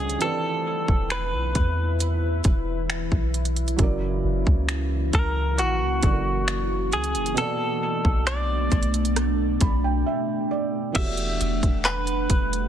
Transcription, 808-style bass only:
0.00 0.17 C#2 loud
0.89 1.34 E1 loud
1.33 1.54 B1 medium
1.55 2.41 E2 loud
2.45 3.09 E1 loud
3.12 3.76 B1 loud
3.79 4.22 F#1 loud
4.24 4.45 F#1 medium
4.47 5.11 C#2 loud
5.14 5.60 C#2 loud
5.59 5.82 A#1 loud
5.81 6.02 C#2 medium
6.03 6.94 F#1 loud
6.93 7.17 C#2 loud
7.15 7.36 F#1 medium
8.05 8.69 B1 loud
8.72 9.58 B1 loud
9.61 10.04 B1 loud
10.96 11.39 E1 loud
11.41 11.62 E1 loud
11.63 12.27 E1 loud
12.30 12.68 E1 loud

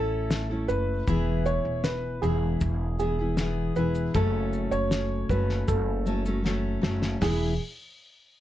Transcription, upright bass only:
0.00 0.65 A1 loud
0.69 1.04 F#1 medium
1.07 1.61 E1 medium
1.65 2.19 E1 medium
2.23 2.58 E1 loud
2.61 3.72 E1 loud
3.76 4.11 E1 medium
4.14 4.68 F#1 medium
4.72 5.26 F#1 medium
5.29 5.65 F#1 loud
5.68 6.79 F#1 loud
6.83 7.18 F#1 medium
7.21 7.57 E1 loud

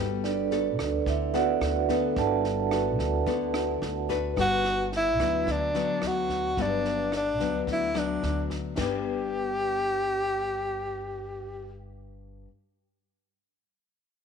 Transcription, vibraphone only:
0.24 1.03 D4 medium
0.24 1.03 A4 medium
0.24 1.03 B4 medium
0.24 1.03 D5 medium
1.08 1.34 E4 medium
1.08 1.34 E5 medium
1.34 1.86 F#4 medium
1.34 1.86 B4 medium
1.34 1.86 D5 medium
1.34 1.85 F#5 medium
1.90 2.17 D4 soft
1.90 2.17 A4 soft
1.90 2.17 B4 soft
1.90 2.16 D5 medium
2.18 2.97 A4 medium
2.18 2.96 D5 medium
2.18 2.96 F#5 medium
2.18 2.96 A5 medium

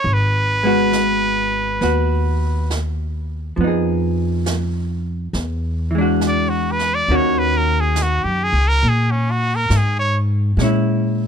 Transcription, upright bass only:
0.04 1.77 G#1 medium
1.81 3.54 D#2 medium
3.57 5.29 F2 medium
5.33 7.05 E2 medium
7.08 8.20 D#2 medium
8.24 8.51 F#2 medium
8.53 8.80 C#2 medium
8.83 9.66 A#2 medium
9.70 10.54 G#2 medium
10.57 11.27 A#2 medium

